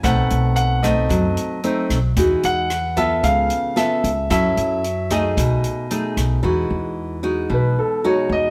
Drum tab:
HH |xxxxxxxx|xxxxxxxx|xxxxxxxx|--------|
SD |r--r---r|--r---r-|r--r---r|--------|
BD |o--oo--o|o--oo--o|o--oo--o|--------|